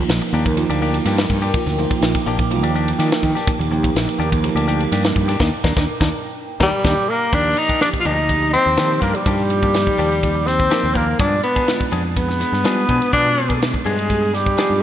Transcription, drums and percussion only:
0.09 snare loud
0.09 hi-hat pedal medium
0.09 ride medium
0.21 ride medium
0.33 hi-hat pedal medium
0.46 kick medium
0.46 ride medium
0.57 hi-hat pedal medium
0.57 ride medium
0.70 ride medium
0.82 hi-hat pedal medium
0.94 ride medium
1.05 snare soft
1.05 hi-hat pedal medium
1.05 ride medium
1.18 snare loud
1.18 ride medium
1.30 kick medium
1.30 hi-hat pedal medium
1.42 ride medium
1.54 kick loud
1.54 hi-hat pedal medium
1.54 ride medium
1.67 snare soft
1.67 ride medium
1.78 hi-hat pedal medium
1.91 kick medium
1.91 ride medium
2.02 snare loud
2.02 hi-hat pedal medium
2.02 ride medium
2.15 kick medium
2.15 ride medium
2.26 hi-hat pedal medium
2.39 kick medium
2.39 ride medium
2.51 hi-hat pedal medium
2.51 ride medium
2.64 ride medium
2.75 hi-hat pedal medium
2.88 ride medium
3.00 snare soft
3.00 hi-hat pedal medium
3.00 ride medium
3.12 snare loud
3.12 ride medium
3.23 kick medium
3.23 hi-hat pedal medium
3.37 snare soft
3.37 ride medium
3.47 kick loud
3.47 hi-hat pedal medium
3.47 ride medium
3.61 ride medium
3.72 hi-hat pedal medium
3.84 kick medium
3.84 ride medium
3.96 snare medium
3.96 hi-hat pedal medium
3.96 ride medium
4.09 ride medium
4.20 hi-hat pedal medium
4.32 kick medium
4.32 ride medium
4.44 hi-hat pedal medium
4.44 ride medium
4.57 ride medium
4.68 hi-hat pedal medium
4.80 ride medium
4.92 snare soft
4.92 hi-hat pedal medium
4.92 ride medium
5.04 snare loud
5.04 ride medium
5.16 kick medium
5.16 hi-hat pedal medium
5.29 snare soft
5.29 ride medium
5.40 kick medium
5.40 snare loud
5.64 kick medium
5.64 snare medium
5.77 kick medium
5.77 snare medium
6.01 kick medium
6.01 snare medium
6.60 kick medium
6.60 snare medium
6.85 kick medium
6.85 snare medium
7.33 kick loud
7.33 crash medium
7.57 hi-hat pedal medium
7.57 ride medium
7.69 kick medium
7.69 ride medium
7.81 snare loud
7.81 hi-hat pedal medium
7.81 ride medium
7.94 kick medium
8.05 hi-hat pedal medium
8.05 ride medium
8.29 kick medium
8.29 hi-hat pedal medium
8.29 ride medium
8.54 hi-hat pedal medium
8.54 ride medium
8.77 snare loud
8.77 hi-hat pedal medium
8.77 ride medium
9.02 kick medium
9.02 hi-hat pedal medium
9.02 ride medium
9.15 ride medium
9.26 kick loud
9.26 hi-hat pedal medium
9.26 ride medium
9.50 hi-hat pedal medium
9.50 ride medium
9.63 kick medium
9.63 ride medium
9.74 snare medium
9.74 hi-hat pedal medium
9.74 ride medium
9.87 kick medium
9.99 hi-hat pedal medium
9.99 ride medium
10.12 ride soft
10.23 kick medium
10.23 hi-hat pedal medium
10.23 ride medium
10.48 snare soft
10.48 hi-hat pedal medium
10.48 ride medium
10.60 kick medium
10.71 snare loud
10.71 hi-hat pedal medium
10.71 ride medium
10.95 kick medium
10.95 hi-hat pedal medium
10.95 ride medium
11.19 kick loud
11.19 hi-hat pedal medium
11.19 ride medium
11.43 hi-hat pedal medium
11.43 ride medium
11.56 kick medium
11.56 ride medium
11.68 snare medium
11.68 hi-hat pedal medium
11.68 ride medium
11.81 kick medium
11.93 hi-hat pedal medium
11.93 ride medium
12.17 kick medium
12.17 hi-hat pedal medium
12.17 ride medium
12.30 snare soft
12.41 snare soft
12.41 hi-hat pedal medium
12.41 ride medium
12.53 snare soft
12.65 snare loud
12.65 hi-hat pedal medium
12.65 ride medium
12.89 kick medium
12.89 hi-hat pedal medium
12.89 ride medium
13.02 ride medium
13.13 kick loud
13.13 hi-hat pedal medium
13.13 ride medium
13.38 hi-hat pedal medium
13.38 ride medium
13.50 kick medium
13.50 ride medium
13.62 snare loud
13.62 hi-hat pedal medium
13.62 ride medium
13.74 kick medium
13.86 hi-hat pedal medium
13.86 ride medium
13.99 ride medium
14.10 kick medium
14.10 hi-hat pedal medium
14.10 ride medium
14.34 snare soft
14.34 hi-hat pedal medium
14.34 ride soft
14.46 kick medium
14.58 snare medium
14.58 hi-hat pedal medium
14.58 ride medium

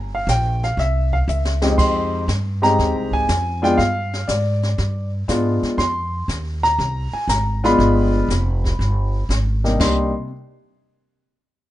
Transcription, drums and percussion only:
0.28 snare medium
0.28 hi-hat pedal medium
0.63 snare soft
0.79 brush sweep soft
0.79 snare soft
1.13 kick medium
1.29 hi-hat pedal medium
1.45 snare medium
1.62 snare medium
1.78 brush sweep medium
1.78 kick medium
1.78 snare soft
1.78 crash medium
2.29 snare medium
2.29 hi-hat pedal soft
2.63 snare soft
2.79 brush sweep soft
2.79 snare soft
3.13 kick medium
3.29 snare medium
3.29 hi-hat pedal medium
3.64 snare soft
3.79 brush sweep soft
3.79 snare soft
4.13 snare soft
4.29 snare medium
4.29 hi-hat pedal medium
4.63 snare soft
4.78 brush sweep soft
4.78 snare soft
5.29 snare medium
5.29 hi-hat pedal medium
5.63 snare soft
5.79 brush sweep soft
5.79 snare soft
6.29 snare medium
6.29 hi-hat pedal soft
6.64 snare soft
6.79 brush sweep soft
6.79 snare soft
7.29 snare medium
7.29 hi-hat pedal medium
7.64 snare soft
7.80 brush sweep soft
7.80 snare soft
8.30 snare medium
8.30 hi-hat pedal medium
8.64 kick medium
8.64 snare soft
8.80 brush sweep soft
8.80 snare soft
9.30 snare medium
9.30 hi-hat pedal medium
9.65 snare soft
9.80 kick medium
9.80 snare medium
9.80 crash medium

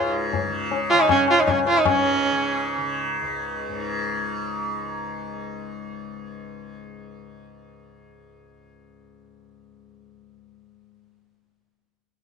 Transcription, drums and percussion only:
0.33 tabla tin medium
0.33 tabla ge medium
0.71 tabla tin medium
0.91 tabla na medium
0.99 tabla na medium
1.09 tabla na loud
1.09 tabla ge medium
1.28 tabla na medium
1.38 tabla na medium
1.48 tabla na loud
1.48 tabla ge medium
1.67 tabla na medium
1.76 tabla na medium
1.85 tabla na loud
1.85 tabla ge loud

